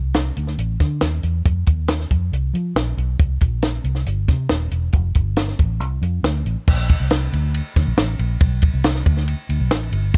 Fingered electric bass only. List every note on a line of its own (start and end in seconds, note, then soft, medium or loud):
0.00 0.30 C2 medium
0.37 0.55 D2 medium
0.58 0.77 A1 medium
0.80 0.99 D3 medium
1.02 1.20 D#2 medium
1.23 1.42 E2 medium
1.46 1.64 F2 medium
1.67 2.04 D#2 medium
2.11 2.29 F2 medium
2.32 2.51 C2 medium
2.54 2.72 F3 medium
2.75 2.94 A#1 medium
2.97 3.16 B1 medium
3.19 3.38 C2 medium
3.41 3.78 A#1 medium
3.84 4.03 C2 medium
4.06 4.25 G1 medium
4.28 4.47 C3 medium
4.50 4.68 D#1 medium
4.71 4.90 E1 medium
4.93 5.12 F1 loud
5.16 5.52 G1 medium
5.59 5.80 A1 medium
5.80 5.98 C2 medium
6.02 6.20 F2 medium
6.23 6.42 D2 medium
6.45 6.55 A1 medium
6.68 6.95 A#1 loud
7.00 7.27 C2 medium
7.33 7.60 D2 medium
7.76 7.85 D2 medium
7.87 7.96 A#1 medium
7.97 8.16 A1 medium
8.19 8.38 A#1 medium
8.41 8.68 B1 loud
8.74 9.01 C2 medium
9.06 9.33 D2 loud
9.49 9.58 D2 medium
9.60 9.70 B1 medium
9.70 9.89 A1 loud
9.92 10.11 G1 medium
10.14 10.18 C2 loud